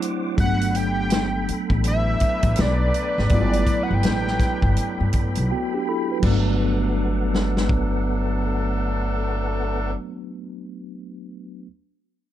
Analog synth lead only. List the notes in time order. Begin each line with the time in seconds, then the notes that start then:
0.40 F#5
0.72 F#5
0.76 G5
1.88 E5
2.61 D5
3.34 D5
3.83 F#5
3.94 G5